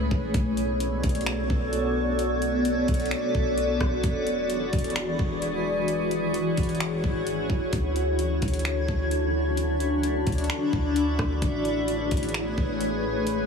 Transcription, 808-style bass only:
0.11 A1
0.34 B1
1.04 B1
1.50 B1
2.89 B1
3.35 B1
3.81 B1
4.04 E1
4.73 E1
5.19 E1
6.58 E1
7.04 G#1
7.50 E1
7.73 D2
8.42 D2
8.88 D2
10.27 D2
10.73 D2
11.19 D2
11.42 A1
12.12 A1
12.58 A1

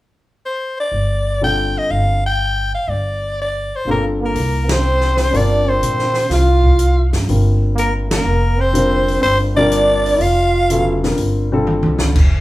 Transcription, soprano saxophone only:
0.45 C5
0.80 D5
1.44 G5
1.78 D#5
1.91 F5
2.26 G5
2.75 F5
2.90 D5
3.42 D5
3.76 C5
3.91 A#4
4.26 A#4
4.72 C5
5.37 D5
5.69 C5
6.34 F5
7.79 A#4
8.13 A#4
8.61 C5
9.23 C5
9.57 D5
10.22 F5

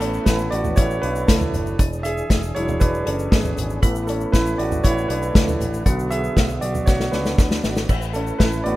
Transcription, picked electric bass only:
Already playing: A1
0.26 A1
0.52 A1
0.78 A1
1.03 B1
1.29 C#2
1.54 F#1
1.79 E1
2.30 E1
2.56 E1
2.81 E1
3.06 F#1
3.32 G#1
3.57 G#1
3.83 A1
4.33 A1
4.58 A1
4.85 A1
5.09 B1
5.35 C#2
5.60 A1
5.86 B1
6.37 B1
6.62 B1
6.88 B1
7.13 C#2
7.38 D2
7.64 G#1
7.89 A1
8.40 A1
8.65 A1

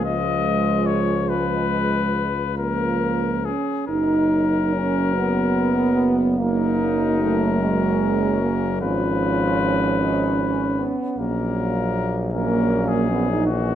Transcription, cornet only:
0.05 D#5
0.86 C#5
1.29 B4
2.58 A#4
3.45 G#4
3.87 A#4
6.39 A#4
8.81 B4
11.16 A#4
12.33 A#4
12.88 G#4
13.46 F#4

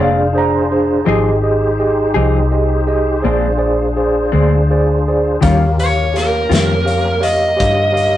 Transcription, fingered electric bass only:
0.00 F1
1.07 G#1
2.15 C2
3.25 A#1
4.33 D2
5.42 D#2
6.51 F2
7.60 G2

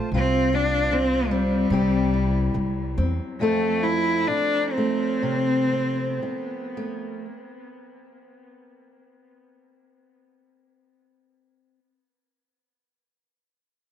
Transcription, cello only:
0.16 C4
0.55 D4
0.93 C4
1.31 G3
3.40 A3
3.83 E4
4.28 D4
4.73 C4

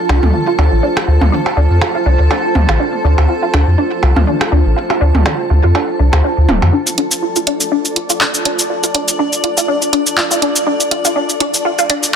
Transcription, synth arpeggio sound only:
0.09 D4
0.34 F4
0.47 F4
0.58 D4
0.83 D4
1.08 F4
1.21 F4
1.32 D4
1.57 D4
1.81 F4
1.95 F4
2.06 D4
2.31 D4
2.55 F4
2.69 F4
2.80 D4
3.04 D4
3.29 F4
3.43 F4
3.53 D4
3.78 D4
4.03 F4
4.16 F4
4.27 D4
4.52 D4
4.77 F4
4.90 F4
5.01 D4
5.26 D4
5.50 F4
5.64 F4
5.75 D4
5.99 D4
6.24 D4
6.49 F4
6.73 D4
6.98 D4
7.22 F4
7.36 F4
7.47 D4
7.72 D4
7.96 F4
8.10 F4
8.21 D4
8.45 D4
8.70 F4
8.84 F4
8.95 D4
9.19 D4
9.44 F4
9.57 F4
9.68 D4
9.93 D4
10.17 F4
10.31 F4
10.42 D4
10.67 D4
10.91 F4
11.05 F4
11.16 D4
11.40 D4
11.65 F4
11.79 F4
11.90 D4

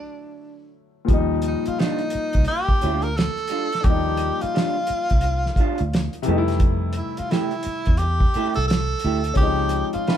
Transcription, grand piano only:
Already playing: D3 F#3 A3 E4 C#5
1.05 A#2 F3
1.10 G3 A#3 D#4
3.81 F3 D4
3.85 G3 A#3
3.90 D#4
6.22 C3 E3
6.27 G3 A3 D#4
6.38 E4
9.34 D#3 G#3 C#4
9.40 F3 C4 D#4

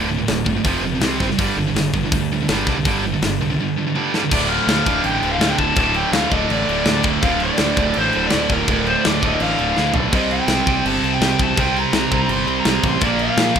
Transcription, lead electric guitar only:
4.33 D5
4.48 F5
5.05 G5
5.32 F5
5.50 G5
5.58 A5
5.96 G5
6.13 F5
6.31 D#5
6.50 D5
7.23 F5
7.43 D5
7.99 C5
8.27 D5
8.53 A#4
8.86 C5
9.06 D5
9.26 D#5
9.41 F5
10.15 D#5
10.32 G5
10.87 A5
11.14 G5
11.43 A5
11.60 G5
11.79 A#5
12.32 C6
12.60 A#5
12.89 C6
13.03 D5
13.22 F5

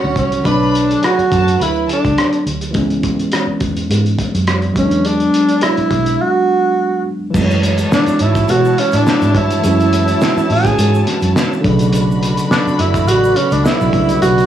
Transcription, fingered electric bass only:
0.04 D2
0.16 C2
0.46 B1
1.18 muted fingered electric bass stroke
1.32 F#2
1.60 D2
2.05 C#2
2.46 D2
2.75 C#2
3.47 muted fingered electric bass stroke
3.61 E2
3.90 G#2
4.35 F#2
4.76 E2
5.78 muted fingered electric bass stroke
5.91 B1
7.34 F#2
8.07 muted fingered electric bass stroke
8.20 G#2
8.50 B2
8.93 A2
9.22 G#2
9.35 G2
9.65 F#2
10.37 muted fingered electric bass stroke
10.50 A2
10.78 G#2
11.22 F#2
11.64 B1
12.66 muted fingered electric bass stroke
12.79 F#1
13.07 A1
13.52 C#2
13.81 B1
13.93 C2
14.23 B1

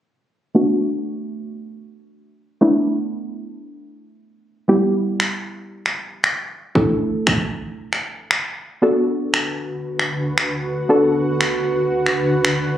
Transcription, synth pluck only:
0.55 A3 B3 D4 F#4
2.61 A3 B3 D4 E4
4.68 G3 B3 E4 G4
6.75 A3 D4 E4 A4
8.82 B3 D4 F#4 A4
10.89 B3 D4 F#4 A4

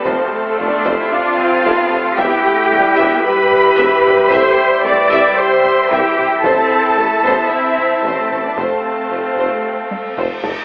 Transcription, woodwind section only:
Already playing: G3 A4
0.04 F5 C6
2.18 E4 G4 B4 E5
6.43 A4
8.56 C4 F5

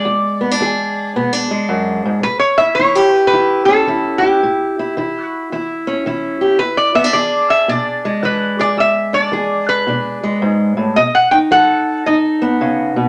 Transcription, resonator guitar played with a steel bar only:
Already playing: D5
2.23 B4
2.39 C#5
2.58 E5
2.75 C#5
3.27 B4
3.65 A4
4.18 G4
5.21 F#4
6.59 B4
6.77 D5
6.95 E5
7.13 D5
7.50 E5
7.69 D5
8.25 B4
8.61 D5
8.80 E5
9.14 D5
9.69 B4
10.96 D#5
11.15 F#5
11.31 G5
11.52 F#5
12.06 D#5

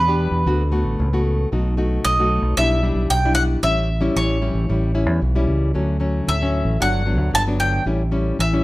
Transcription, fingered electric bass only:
Already playing: E2
0.31 E2
0.46 D2
0.84 A1
1.00 C#2
1.52 B1
2.05 B1
2.42 B1
2.57 B1
2.95 B1
3.10 B1
3.63 A1
4.16 A1
4.54 A1
4.69 A1
5.06 E2
5.22 B1
5.47 C#2
5.75 D2
6.28 D2
6.65 A1
6.80 G1
7.18 D2
7.34 G1
7.86 A1
8.39 A1

